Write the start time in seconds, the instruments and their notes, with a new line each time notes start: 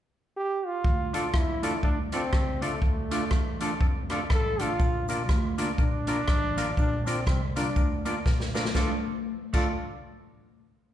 0.36 trombone G4
0.66 trombone F4
0.84 upright bass D2, kick
1.13 clean electric guitar A3 D4 F4 A4, tonewheel organ D4 F4 A4 D5, trombone F4, closed hi-hat
1.33 upright bass E2, trombone E4, muted clean electric guitar stroke, kick, cross-stick
1.63 clean electric guitar A3 D4 F4 A4, tonewheel organ D4 F4 A4 D5, closed hi-hat
1.83 upright bass D2, trombone D4, tonewheel organ A4 D5, muted clean electric guitar stroke, kick
2.12 clean electric guitar A3 D4 F4 A4, trombone C4, tonewheel organ D4 F4 A4 D5, closed hi-hat
2.32 upright bass C#2, tonewheel organ A4 D5, muted clean electric guitar stroke, kick, cross-stick
2.61 clean electric guitar A3 D4 F4 A4, trombone A3, tonewheel organ D4 F4 A4 D5, closed hi-hat
2.82 upright bass D2, trombone A3, kick
3.11 clean electric guitar A3 D4 F4 A4, tonewheel organ D4 F4 A4 D5, closed hi-hat
3.31 upright bass E2, muted clean electric guitar stroke, kick, cross-stick
3.61 clean electric guitar A3 D4 F4 A4, tonewheel organ D4 F4 A4 D5, closed hi-hat
3.81 upright bass F2, tonewheel organ A4 D5, muted clean electric guitar stroke, kick
4.10 clean electric guitar A3 D4 F4 A4, tonewheel organ D4 F4 A4 D5, cross-stick, closed hi-hat
4.30 upright bass A1, tonewheel organ A4 D5, trombone A4, muted clean electric guitar stroke, kick, cross-stick
4.59 clean electric guitar A3 D4 F4 A4, tonewheel organ D4 F4 A4 D5, trombone F4, closed hi-hat
4.80 upright bass A#1, kick, cabasa
5.08 clean electric guitar A#3 D4 F4 A#4, tonewheel organ D4 F4 A#4 D5, trombone F4, closed hi-hat, cabasa
5.29 upright bass D2, muted clean electric guitar stroke, kick, cross-stick, cabasa
5.58 clean electric guitar A#3 D4 F4 A#4, tonewheel organ D4 F4 A#4 D5, closed hi-hat, cabasa
5.78 upright bass A#1, trombone D4, tonewheel organ A#4 D5, muted clean electric guitar stroke, kick, cabasa
6.07 clean electric guitar A#3 D4 F4 A#4, tonewheel organ D4 F4 A#4 D5, closed hi-hat, cabasa
6.28 upright bass A1, tonewheel organ A#4 D5, kick, cross-stick, cabasa
6.57 clean electric guitar A#3 D4 F4 A#4, tonewheel organ D4 F4 A#4 D5, closed hi-hat, cabasa
6.77 upright bass A#1, trombone D4, kick, cabasa
7.06 clean electric guitar A#3 D4 F4 A#4, trombone C4, tonewheel organ D4 F4 A#4 D5, closed hi-hat, cabasa
7.26 upright bass C2, trombone C4, muted clean electric guitar stroke, kick, cross-stick, cabasa
7.56 clean electric guitar A#3 D4 F4 A#4, tonewheel organ D4 F4 A#4 D5, trombone D4, closed hi-hat, cabasa
7.76 upright bass D2, tonewheel organ A#4 D5, muted clean electric guitar stroke, kick, cabasa
8.05 clean electric guitar A#3 D4 F4 A#4, tonewheel organ D4 F4 A#4 D5, closed hi-hat, cabasa
8.25 upright bass A#1, tonewheel organ A#4 D5, muted clean electric guitar stroke, kick, snare, cabasa
8.40 snare
8.54 clean electric guitar A#3 D4 F4 A#4, tonewheel organ D4 F4 A#4 D5, snare, cabasa
8.65 snare
8.75 upright bass D2, clean electric guitar A3 D4 F4 A4, tonewheel organ D4 F4 A4 D5, trombone F4, kick, snare, cabasa
9.53 upright bass D2, clean electric guitar A3 D4 F4 A4, tonewheel organ D4 F4 A4 D5, trombone F4, kick, crash, cabasa